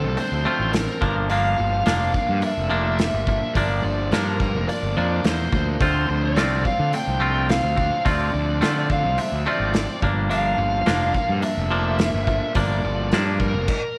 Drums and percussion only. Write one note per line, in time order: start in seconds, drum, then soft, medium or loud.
0.17 open hi-hat soft
0.73 snare loud
0.73 open hi-hat soft
1.02 kick medium
1.29 open hi-hat soft
1.86 snare medium
1.86 open hi-hat soft
2.14 kick medium
2.42 open hi-hat soft
2.99 snare medium
2.99 open hi-hat medium
3.27 kick medium
3.55 kick medium
3.55 open hi-hat soft
4.12 snare medium
4.12 open hi-hat soft
4.40 kick medium
4.69 open hi-hat soft
5.24 snare loud
5.24 open hi-hat soft
5.52 kick medium
5.81 kick loud
5.81 open hi-hat soft
6.36 snare medium
6.36 open hi-hat soft
6.65 kick medium
6.93 open hi-hat soft
7.49 snare loud
7.49 open hi-hat soft
7.77 kick medium
8.06 kick medium
8.06 open hi-hat soft
8.62 snare medium
8.62 open hi-hat soft
8.90 kick medium
9.18 open hi-hat soft
9.74 snare loud
9.74 open hi-hat soft
10.02 kick medium
10.31 open hi-hat soft
10.86 snare medium
10.86 open hi-hat soft
11.14 kick medium
11.42 open hi-hat soft
11.99 snare loud
11.99 open hi-hat soft
12.27 kick medium
12.55 kick medium
12.55 open hi-hat soft
13.12 snare medium
13.12 open hi-hat soft
13.40 kick medium
13.68 kick medium
13.68 crash medium